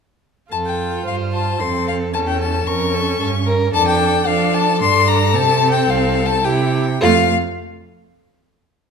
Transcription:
0.52 1.02 F2 soft
0.52 1.62 F4 soft
0.52 1.03 A4 soft
0.52 0.57 A5 medium
0.66 1.06 G5 medium
1.06 1.59 G2 soft
1.06 1.62 C5 soft
1.06 1.15 F5 soft
1.33 1.62 A5 medium
1.60 2.16 F2 soft
1.60 2.13 C4 soft
1.60 2.14 A4 soft
1.60 1.87 C6 medium
1.88 1.96 F5 medium
2.14 2.67 E2 medium
2.14 2.66 C#4 soft
2.14 2.69 A4 soft
2.14 2.19 A5 medium
2.27 2.40 G5 medium
2.41 2.69 A5 medium
2.67 3.19 F2 medium
2.67 3.72 C#4 soft
2.67 2.96 A#4 medium
2.67 3.47 C#6 medium
2.94 3.19 A4 medium
3.20 3.73 G2 medium
3.20 3.28 A4 medium
3.46 3.73 A#4 medium
3.73 4.26 F2 medium
3.73 4.26 D4 medium
3.73 4.26 A4 medium
3.73 3.86 A5 medium
3.88 4.28 G5 medium
4.27 4.82 F3 medium
4.27 4.79 D4 medium
4.27 6.46 A4 medium
4.27 4.56 F5 medium
4.54 4.81 A5 medium
4.80 5.36 G2 medium
4.80 5.36 D4 medium
4.80 5.09 C6 medium
5.08 5.36 A#5 medium
5.34 5.89 C3 medium
5.34 6.44 C4 medium
5.34 5.71 A5 medium
5.72 5.91 G5 medium
5.89 6.44 C2 medium
5.89 6.27 F5 medium
6.26 6.46 A5 medium
6.44 7.01 C3 medium
6.44 6.80 E4 medium
6.44 6.81 G4 medium
6.44 7.02 G5 medium
7.01 7.34 F2 medium
7.01 7.33 A3 medium
7.01 7.33 F4 medium
7.01 7.34 F5 medium

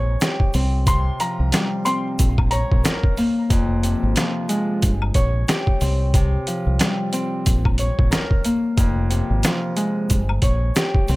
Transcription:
0.00 0.15 A#1 loud
0.00 0.61 C#5 medium
0.21 2.56 G4 loud
0.21 snare loud
0.21 closed hi-hat medium
0.21 shaker medium
0.40 kick medium
0.53 1.09 C2 loud
0.53 1.86 C4 medium
0.53 open hi-hat medium
0.53 shaker medium
0.87 2.24 C3 medium
0.87 1.17 C6 medium
0.87 kick loud
0.87 closed hi-hat medium
0.87 shaker medium
1.20 2.24 F3 medium
1.20 1.50 A#5 medium
1.20 closed hi-hat medium
1.20 shaker medium
1.40 1.51 C2 medium
1.52 2.24 G3 medium
1.52 snare loud
1.52 closed hi-hat medium
1.52 shaker medium
1.85 2.58 C4 loud
1.85 2.03 C6 medium
1.85 closed hi-hat medium
1.85 shaker medium
2.19 2.63 A#1 loud
2.19 kick medium
2.19 closed hi-hat medium
2.19 shaker medium
2.38 kick loud
2.38 high woodblock medium
2.51 3.89 C#5 medium
2.51 2.81 A#5 medium
2.51 closed hi-hat medium
2.51 shaker soft
2.72 2.83 A#1 medium
2.72 kick loud
2.84 4.96 A#4 loud
2.84 snare loud
2.84 closed hi-hat medium
2.84 shaker medium
3.04 kick loud
3.17 6.40 A#3 medium
3.17 open hi-hat medium
3.17 shaker medium
3.50 3.94 F1 loud
3.50 4.87 F2 loud
3.50 kick loud
3.50 closed hi-hat medium
3.50 shaker medium
3.83 4.87 C3 medium
3.83 closed hi-hat medium
3.83 shaker soft
4.03 4.14 G#1 medium
4.16 4.87 F3 medium
4.16 snare loud
4.16 closed hi-hat medium
4.16 shaker medium
4.49 4.87 G#3 loud
4.49 closed hi-hat medium
4.49 shaker soft
4.82 5.10 G1 loud
4.82 kick medium
4.82 closed hi-hat medium
4.82 shaker medium
5.02 high woodblock medium
5.14 5.43 A#1 loud
5.14 5.88 C#5 medium
5.14 kick medium
5.14 closed hi-hat medium
5.14 shaker soft
5.48 7.84 G4 loud
5.48 snare loud
5.48 closed hi-hat medium
5.48 shaker medium
5.67 kick loud
5.81 6.36 C2 loud
5.81 7.13 C4 medium
5.81 open hi-hat medium
5.81 shaker medium
6.14 7.51 C3 medium
6.14 kick loud
6.14 closed hi-hat medium
6.14 shaker medium
6.47 7.51 F3 medium
6.47 closed hi-hat medium
6.47 shaker soft
6.67 6.78 C2 medium
6.79 7.51 G3 medium
6.79 snare loud
6.79 closed hi-hat medium
6.79 shaker medium
7.13 7.85 C4 loud
7.13 closed hi-hat medium
7.13 shaker soft
7.46 7.90 A#1 loud
7.46 kick medium
7.46 closed hi-hat medium
7.46 shaker medium
7.65 kick loud
7.65 high woodblock medium
7.78 9.16 C#5 medium
7.78 closed hi-hat medium
7.78 shaker soft
7.99 8.10 A#1 medium
7.99 kick loud
8.11 10.23 A#4 loud
8.11 snare loud
8.11 closed hi-hat medium
8.11 shaker medium
8.31 kick medium
8.45 11.16 A#3 medium
8.45 closed hi-hat medium
8.45 shaker medium
8.77 9.21 F1 loud
8.77 10.15 F2 medium
8.77 kick loud
8.77 closed hi-hat medium
8.77 shaker medium
9.10 10.15 C3 medium
9.10 closed hi-hat medium
9.10 shaker soft
9.30 9.42 G#1 medium
9.43 10.15 F3 medium
9.43 snare loud
9.43 closed hi-hat medium
9.43 shaker medium
9.76 10.15 G#3 medium
9.76 closed hi-hat medium
9.76 shaker soft
10.10 10.38 G1 loud
10.10 kick medium
10.10 closed hi-hat medium
10.10 shaker medium
10.29 high woodblock medium
10.42 10.70 A#1 loud
10.42 11.16 C#5 medium
10.42 kick medium
10.42 closed hi-hat medium
10.42 shaker soft
10.75 11.16 G4 loud
10.75 snare loud
10.75 closed hi-hat medium
10.75 shaker medium
10.95 kick loud
11.08 11.16 C2 loud
11.08 11.16 C4 medium
11.08 open hi-hat medium
11.08 shaker medium

